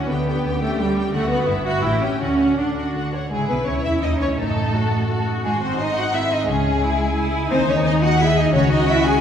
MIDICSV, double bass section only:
0, 0, Header, 1, 2, 480
1, 0, Start_track
1, 0, Key_signature, 2, "major"
1, 0, Tempo, 344630
1, 146, Time_signature, 3, 2, 24, 8
1, 2064, Tempo, 368550
1, 4464, Key_signature, 4, "minor"
1, 4464, Tempo, 354610
1, 6864, Tempo, 345224
1, 12579, End_track
2, 0, Start_track
2, 0, Title_t, "Double bass section"
2, 0, Program_c, 0, 48
2, 149, Note_on_c, 0, 38, 54
2, 573, Note_off_c, 0, 38, 0
2, 629, Note_on_c, 0, 38, 55
2, 1049, Note_off_c, 0, 38, 0
2, 1104, Note_on_c, 0, 38, 55
2, 1526, Note_off_c, 0, 38, 0
2, 1572, Note_on_c, 0, 38, 62
2, 2001, Note_off_c, 0, 38, 0
2, 2058, Note_on_c, 0, 31, 60
2, 2472, Note_off_c, 0, 31, 0
2, 2524, Note_on_c, 0, 33, 56
2, 2951, Note_off_c, 0, 33, 0
2, 3013, Note_on_c, 0, 38, 55
2, 3444, Note_off_c, 0, 38, 0
2, 3501, Note_on_c, 0, 38, 47
2, 3930, Note_off_c, 0, 38, 0
2, 3977, Note_on_c, 0, 38, 42
2, 4404, Note_off_c, 0, 38, 0
2, 4455, Note_on_c, 0, 32, 53
2, 4553, Note_off_c, 0, 32, 0
2, 4692, Note_on_c, 0, 35, 47
2, 4933, Note_off_c, 0, 35, 0
2, 4938, Note_on_c, 0, 37, 51
2, 5176, Note_off_c, 0, 37, 0
2, 5176, Note_on_c, 0, 40, 54
2, 5417, Note_off_c, 0, 40, 0
2, 5421, Note_on_c, 0, 39, 61
2, 5661, Note_off_c, 0, 39, 0
2, 5661, Note_on_c, 0, 37, 53
2, 5898, Note_on_c, 0, 33, 54
2, 5901, Note_off_c, 0, 37, 0
2, 7099, Note_off_c, 0, 33, 0
2, 7340, Note_on_c, 0, 32, 58
2, 8734, Note_off_c, 0, 32, 0
2, 8793, Note_on_c, 0, 37, 65
2, 10195, Note_off_c, 0, 37, 0
2, 10222, Note_on_c, 0, 39, 70
2, 11655, Note_off_c, 0, 39, 0
2, 11655, Note_on_c, 0, 37, 69
2, 12579, Note_off_c, 0, 37, 0
2, 12579, End_track
0, 0, End_of_file